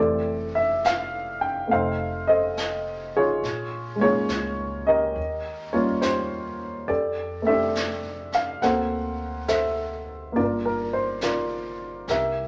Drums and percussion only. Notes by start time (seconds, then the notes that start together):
0.84 snare, hi-hat pedal
1.71 brush sweep
2.57 snare, hi-hat pedal
3.43 brush sweep, snare
4.29 snare, hi-hat pedal
5.15 brush sweep
6.02 snare, hi-hat pedal
6.89 brush sweep
7.75 snare, hi-hat pedal
8.32 snare
8.62 brush sweep, snare
9.48 snare, hi-hat pedal
10.35 brush sweep
11.21 snare, hi-hat pedal
12.08 brush sweep, snare